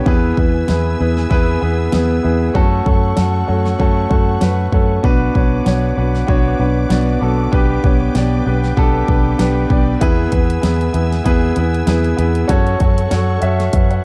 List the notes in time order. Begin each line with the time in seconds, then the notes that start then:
0.06 E2 E3 B3 E4 G#4 B4 G#5 E6, kick
0.37 E2 B3 E4 G#4 B4, kick
0.68 E2 B3 E4 G#4 B4, snare
0.99 E2 B3 E4 G#4 B4
1.17 snare
1.30 E2 B3 E4 G#4 B4, kick
1.61 E2 B3 E4 G#4 B4
1.92 E2 B3 E4 G#4 B4, snare
2.23 E2 B3 E4 G#4 B4
2.54 F#2 A3 C#4 F#4 A4 F#5 C#6, kick
2.85 F#2 A3 C#4 F#4 A4, kick
3.16 F#2 A3 C#4 F#4 A4, snare
3.47 F#2 A3 C#4 F#4 A4
3.66 snare
3.79 F#2 A3 C#4 F#4 A4, kick
4.09 F#2 A3 C#4 F#4 A4, kick
4.40 F#2 A3 C#4 F#4 B4, snare
4.72 F#2 A3 C#4 F#4 A4, kick
5.03 B1 B2 B3 D4 F#4 B4 F#5 D6, kick
5.34 B1 B3 D4 F#4 C#5, kick
5.65 B1 B3 D4 F#4 C#5, snare
5.96 B1 B3 D4 F#4 B4
6.15 snare
6.27 B1 B3 D4 F#4 C#5, kick
6.58 B1 B3 D4 F#4 B4
6.89 B1 B3 D4 F#4 D5, snare
7.21 B1 B3 D4 F#4 A4
7.52 B1 B2 B3 D4 G4 B4 G5, kick
7.84 B1 B3 D4 G4 C#5, kick
8.15 B1 B3 D4 G4 D5, snare
8.45 B1 B3 D4 G4 B4
8.64 snare
8.77 B1 B3 D4 G4 A4, kick
9.08 B1 B3 D4 G4 B4, kick
9.38 B1 B3 D4 G4 B4 B5, snare
9.70 B1 B3 D4 G4 D5 G5, kick
10.01 E2 E3 B3 E4 G#4 B4 G#5 E6, kick, closed hi-hat
10.31 E2 B3 E4 G#4 B4, kick, closed hi-hat
10.50 closed hi-hat
10.62 E2 B3 E4 G#4 B4, snare, closed hi-hat
10.81 closed hi-hat
10.93 E2 B3 E4 G#4 B4, closed hi-hat
11.12 snare, closed hi-hat
11.24 E2 B3 E4 G#4 B4, kick, closed hi-hat
11.56 E2 B3 E4 G#4 B4, closed hi-hat
11.74 closed hi-hat
11.86 E2 B3 E4 G#4 B4, snare, closed hi-hat
12.04 closed hi-hat
12.17 E2 B3 E4 G#4 B4, closed hi-hat
12.35 closed hi-hat
12.48 F#2 C#4 F#4 A4 C#5 F#5 C#6, kick, closed hi-hat
12.67 closed hi-hat
12.79 F#2 C#4 F#4 A4 C#5, kick, closed hi-hat
12.98 closed hi-hat
13.10 F#2 C#4 F#4 A4 C#5, snare, closed hi-hat
13.41 F#2 C#4 F#4 A4 E5, closed hi-hat
13.60 snare, closed hi-hat
13.73 F#2 B4 E5, kick, closed hi-hat
13.90 C#5 F#5, closed hi-hat